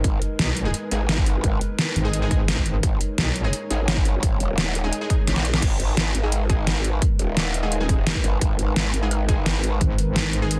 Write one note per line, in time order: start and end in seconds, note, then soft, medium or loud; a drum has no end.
0.00 5.58 G#3 medium
0.00 5.58 D#4 medium
0.00 5.58 A#4 medium
0.04 0.20 G#1 loud
0.04 2.82 B4 medium
0.04 kick loud
0.04 closed hi-hat medium
0.22 closed hi-hat medium
0.39 0.73 B1 loud
0.39 snare loud
0.39 closed hi-hat medium
0.57 closed hi-hat medium
0.65 0.70 G#3 medium
0.65 0.70 D#4 medium
0.65 0.70 G#4 medium
0.74 closed hi-hat medium
0.91 1.42 G#1 loud
0.91 0.99 G#3 medium
0.91 0.99 D#4 medium
0.91 0.99 G#4 medium
0.91 closed hi-hat medium
1.09 snare loud
1.09 closed hi-hat medium
1.18 kick loud
1.26 closed hi-hat medium
1.44 1.60 G#1 loud
1.44 kick loud
1.44 closed hi-hat medium
1.61 closed hi-hat medium
1.79 snare loud
1.79 closed hi-hat medium
1.96 2.82 G#1 loud
1.96 closed hi-hat medium
2.05 2.20 G#3 medium
2.05 2.20 D#4 medium
2.05 2.20 G#4 loud
2.13 closed hi-hat loud
2.22 3.42 G#3 loud
2.22 3.42 D#4 medium
2.22 3.42 G#4 loud
2.31 kick loud
2.31 closed hi-hat medium
2.48 snare loud
2.48 closed hi-hat medium
2.57 kick medium
2.66 closed hi-hat medium
2.83 2.99 G#1 loud
2.83 5.61 C#5 medium
2.83 kick loud
2.83 closed hi-hat loud
3.01 closed hi-hat medium
3.18 3.52 B1 loud
3.18 snare loud
3.18 closed hi-hat loud
3.36 closed hi-hat medium
3.44 3.49 G#3 medium
3.44 3.49 D#4 medium
3.44 3.49 G#4 medium
3.53 closed hi-hat loud
3.70 4.21 G#1 loud
3.70 3.78 G#3 medium
3.70 3.78 D#4 medium
3.70 3.78 G#4 medium
3.70 closed hi-hat medium
3.88 snare loud
3.88 closed hi-hat medium
3.97 kick loud
4.05 closed hi-hat medium
4.23 4.39 G#1 loud
4.23 kick loud
4.23 closed hi-hat loud
4.40 4.91 D#1 loud
4.40 closed hi-hat medium
4.58 snare loud
4.58 closed hi-hat medium
4.75 closed hi-hat medium
4.84 4.99 G#3 medium
4.84 4.99 D#4 medium
4.84 4.99 G#4 loud
4.93 closed hi-hat loud
5.01 5.61 G#3 medium
5.01 5.61 D#4 medium
5.01 5.61 G#4 loud
5.10 kick loud
5.10 closed hi-hat medium
5.27 5.61 A#1 loud
5.27 snare medium
5.27 closed hi-hat medium
5.36 snare medium
5.45 closed hi-hat medium
5.54 snare medium
5.62 5.96 G#1 loud
5.62 10.60 G#3 medium
5.62 10.60 D#4 medium
5.62 10.60 A#4 medium
5.62 10.60 B4 medium
5.62 kick loud
5.62 closed hi-hat loud
5.62 crash loud
5.80 closed hi-hat medium
5.97 6.13 G#1 medium
5.97 snare loud
5.97 closed hi-hat loud
6.15 7.00 G#1 loud
6.15 closed hi-hat medium
6.23 6.28 G#3 medium
6.23 6.28 D#4 medium
6.23 6.28 G#4 loud
6.32 closed hi-hat loud
6.50 6.57 G#3 medium
6.50 6.57 D#4 medium
6.50 6.57 G#4 medium
6.50 kick loud
6.50 closed hi-hat medium
6.67 snare loud
6.67 closed hi-hat medium
6.84 closed hi-hat medium
7.02 kick loud
7.02 closed hi-hat loud
7.19 8.05 D#1 medium
7.19 closed hi-hat medium
7.37 snare loud
7.37 closed hi-hat loud
7.54 closed hi-hat medium
7.63 7.78 G#3 medium
7.63 7.78 D#4 medium
7.63 7.78 G#4 loud
7.72 closed hi-hat loud
7.80 9.00 G#3 medium
7.80 9.00 D#4 medium
7.80 9.00 G#4 loud
7.89 kick loud
7.89 closed hi-hat medium
8.07 snare loud
8.07 closed hi-hat loud
8.15 kick medium
8.24 8.40 G#1 loud
8.24 closed hi-hat medium
8.41 8.75 G#1 loud
8.41 kick loud
8.41 closed hi-hat loud
8.59 closed hi-hat medium
8.76 8.92 G#1 loud
8.76 snare loud
8.76 closed hi-hat medium
8.94 9.80 G#1 loud
8.94 closed hi-hat medium
9.02 9.07 G#3 medium
9.02 9.07 D#4 medium
9.02 9.07 G#4 medium
9.11 closed hi-hat loud
9.29 9.37 G#3 medium
9.29 9.37 D#4 medium
9.29 9.37 G#4 medium
9.29 kick loud
9.29 closed hi-hat medium
9.46 snare loud
9.46 closed hi-hat medium
9.64 closed hi-hat medium
9.81 10.60 G#1 loud
9.81 kick loud
9.81 closed hi-hat medium
9.98 closed hi-hat medium
10.16 snare loud
10.16 closed hi-hat medium
10.33 closed hi-hat medium
10.42 10.57 G#3 medium
10.42 10.57 D#4 medium
10.42 10.57 G#4 loud
10.51 closed hi-hat loud